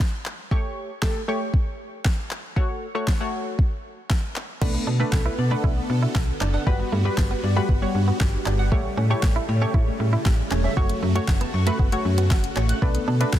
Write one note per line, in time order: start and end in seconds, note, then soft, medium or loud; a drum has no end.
0.00 kick loud
0.00 snare medium
0.00 clap loud
0.26 clap medium
0.51 0.91 A3 medium
0.51 0.91 G4 medium
0.51 0.91 C#5 loud
0.51 kick loud
1.02 1.22 A3 medium
1.02 1.22 G4 medium
1.02 1.23 A4 loud
1.02 kick loud
1.02 snare medium
1.02 clap loud
1.28 2.08 A3 medium
1.28 2.08 G4 medium
1.28 2.08 C#5 loud
1.54 kick loud
2.05 kick loud
2.05 snare medium
2.05 clap loud
2.31 clap medium
2.56 2.86 A3 medium
2.56 2.86 F#4 medium
2.56 2.86 C#5 loud
2.56 kick loud
2.95 3.15 A3 medium
2.95 3.15 F#4 medium
2.95 3.15 C#5 medium
3.08 kick loud
3.08 snare loud
3.08 clap loud
3.20 4.00 A3 medium
3.20 4.00 F#4 medium
3.20 4.00 C#5 medium
3.59 kick loud
4.10 kick loud
4.10 snare medium
4.10 clap loud
4.36 clap medium
4.61 4.78 B1 loud
4.61 6.65 D3 medium
4.61 4.91 A3 medium
4.61 4.69 A3 medium
4.61 4.70 B3 medium
4.61 6.65 B3 medium
4.61 4.91 D4 medium
4.61 6.65 A4 medium
4.61 4.92 B4 loud
4.61 kick loud
4.61 crash medium
4.74 4.82 B3 medium
4.74 muted clean electric guitar stroke soft
4.87 5.04 B2 loud
4.87 4.95 D4 medium
5.00 5.40 A3 medium
5.00 5.40 D4 medium
5.00 5.08 F#4 loud
5.00 5.40 B4 medium
5.13 5.29 B1 loud
5.13 5.20 A4 medium
5.13 kick loud
5.13 snare medium
5.13 clap loud
5.26 5.34 E4 medium
5.26 5.33 B4 medium
5.38 5.55 B2 loud
5.38 5.46 D5 loud
5.38 muted clean electric guitar stroke soft
5.51 6.31 A3 medium
5.51 6.31 D4 medium
5.51 5.59 D4 medium
5.51 6.31 B4 loud
5.51 5.59 F#5 medium
5.64 5.81 B1 loud
5.64 5.72 A3 medium
5.64 5.72 E4 medium
5.64 kick loud
5.77 5.84 B3 medium
5.90 6.06 B2 loud
5.90 5.97 D4 medium
5.90 muted clean electric guitar stroke soft
6.03 6.11 E4 medium
6.03 6.10 F#4 medium
6.15 6.32 B1 medium
6.15 6.23 A4 loud
6.15 muted clean electric guitar stroke soft
6.15 kick loud
6.15 snare medium
6.15 clap loud
6.41 6.58 F#1 medium
6.41 6.49 D4 medium
6.41 6.49 D5 medium
6.41 clap medium
6.54 6.62 D4 medium
6.54 6.61 F#5 loud
6.66 6.83 G1 loud
6.66 6.96 G3 medium
6.66 6.74 G3 medium
6.66 6.75 G3 medium
6.66 8.70 B3 medium
6.66 8.70 F#4 medium
6.66 6.97 F#4 medium
6.66 6.97 B4 loud
6.66 kick loud
6.79 6.87 B3 medium
6.79 muted clean electric guitar stroke soft
6.92 7.09 G2 loud
6.92 7.00 A3 medium
7.05 7.45 G3 medium
7.05 7.13 F#4 loud
7.05 7.45 F#4 medium
7.05 7.45 B4 medium
7.18 7.35 G1 loud
7.18 7.25 G4 medium
7.18 kick loud
7.18 snare loud
7.18 clap loud
7.31 7.39 B3 medium
7.31 7.38 B4 medium
7.43 7.60 G2 loud
7.43 7.51 D5 loud
7.43 muted clean electric guitar stroke soft
7.56 7.76 G3 medium
7.56 7.65 A3 medium
7.56 7.76 F#4 medium
7.56 7.77 B4 medium
7.56 7.64 F#5 medium
7.69 7.86 G1 loud
7.69 7.77 G3 medium
7.69 7.77 B3 medium
7.69 kick loud
7.82 8.52 G3 medium
7.82 7.89 B3 medium
7.82 8.52 F#4 medium
7.82 8.52 C#5 loud
7.95 8.12 G2 medium
7.95 8.02 D4 medium
7.95 muted clean electric guitar stroke soft
8.08 8.16 B3 medium
8.08 8.15 F#4 medium
8.20 8.37 G1 loud
8.20 8.28 G4 loud
8.20 kick loud
8.20 snare medium
8.20 clap loud
8.46 8.73 G1 medium
8.46 8.54 D4 medium
8.46 8.54 D5 medium
8.46 clap medium
8.59 8.66 F#5 loud
8.72 8.89 A1 loud
8.72 8.79 G3 medium
8.72 9.02 A3 medium
8.72 8.80 A3 medium
8.72 9.02 G4 medium
8.72 9.02 C#5 medium
8.72 kick loud
8.85 8.92 A3 medium
8.85 muted clean electric guitar stroke soft
8.97 9.14 A2 loud
8.97 9.06 C#4 medium
9.10 9.50 A3 medium
9.10 9.18 E4 loud
9.10 9.50 G4 medium
9.10 9.50 C#5 loud
9.23 9.40 A1 loud
9.23 9.30 G4 medium
9.23 kick loud
9.23 snare medium
9.23 clap loud
9.36 9.44 E4 medium
9.36 9.43 A4 medium
9.49 9.65 A2 loud
9.49 9.56 C#5 loud
9.49 muted clean electric guitar stroke soft
9.62 10.41 A3 medium
9.62 9.70 C#4 medium
9.62 10.41 G4 medium
9.62 10.41 C#5 medium
9.62 9.69 E5 medium
9.74 9.91 A1 loud
9.74 9.82 G3 medium
9.74 9.82 E4 medium
9.74 kick loud
9.87 9.95 A3 medium
10.00 10.17 A2 loud
10.00 10.08 C#4 medium
10.00 muted clean electric guitar stroke soft
10.13 10.20 E4 medium
10.13 10.21 E4 medium
10.26 10.42 A1 loud
10.26 10.33 G4 loud
10.26 muted clean electric guitar stroke soft
10.26 kick loud
10.26 snare medium
10.26 clap loud
10.51 10.68 E1 loud
10.51 10.59 C#4 medium
10.51 10.59 C#5 medium
10.51 clap medium
10.64 10.72 C#4 medium
10.64 10.72 E5 loud
10.77 10.94 F#1 loud
10.77 10.85 F#3 medium
10.77 11.07 A3 medium
10.77 12.80 F#4 medium
10.77 10.85 F#4 medium
10.77 11.07 F#4 medium
10.77 11.07 C#5 medium
10.77 kick loud
10.89 10.97 A3 medium
10.89 muted clean electric guitar stroke soft
10.89 closed hi-hat medium
11.03 11.19 F#2 loud
11.03 11.11 A3 medium
11.15 11.55 A3 medium
11.15 11.23 F#4 loud
11.15 11.55 F#4 medium
11.15 11.55 C#5 loud
11.15 closed hi-hat medium
11.28 11.45 F#1 loud
11.28 11.36 F#5 medium
11.28 kick loud
11.28 snare loud
11.28 clap loud
11.41 11.49 B3 medium
11.41 11.49 A5 medium
11.41 closed hi-hat medium
11.54 11.71 F#2 medium
11.54 11.61 C#6 loud
11.54 muted clean electric guitar stroke soft
11.67 11.87 A3 medium
11.67 11.75 A3 medium
11.67 11.87 F#4 medium
11.67 11.87 B4 loud
11.67 11.74 F#6 medium
11.67 closed hi-hat medium
11.79 11.96 F#1 loud
11.79 11.87 F#3 medium
11.79 11.88 B3 medium
11.79 kick loud
11.92 12.62 A3 medium
11.92 12.00 A3 medium
11.92 12.62 F#4 medium
11.92 12.62 C#5 loud
11.92 closed hi-hat medium
12.05 12.32 F#2 medium
12.05 12.13 C#4 medium
12.05 muted clean electric guitar stroke soft
12.18 12.26 B3 medium
12.18 12.25 F#4 medium
12.18 closed hi-hat medium
12.31 12.48 F#1 loud
12.31 12.38 F#5 loud
12.31 kick loud
12.31 snare medium
12.31 clap loud
12.44 closed hi-hat medium
12.56 12.73 A1 medium
12.56 12.65 C#4 medium
12.56 12.64 C#6 medium
12.56 clap medium
12.69 12.77 F#6 loud
12.69 closed hi-hat medium
12.82 12.99 B1 loud
12.82 13.12 A3 medium
12.82 12.90 A3 medium
12.82 13.39 B3 medium
12.82 12.90 B3 medium
12.82 13.12 D4 medium
12.82 13.12 B4 medium
12.82 kick loud
12.95 13.02 B3 medium
12.95 muted clean electric guitar stroke soft
12.95 closed hi-hat medium
13.08 13.24 B2 loud
13.08 13.16 D4 medium
13.20 13.39 A3 medium
13.20 13.39 D4 medium
13.20 13.28 F#4 loud
13.20 13.39 B4 medium
13.20 closed hi-hat medium
13.33 13.39 B1 loud
13.33 13.39 A4 medium
13.33 kick loud
13.33 snare loud
13.33 clap loud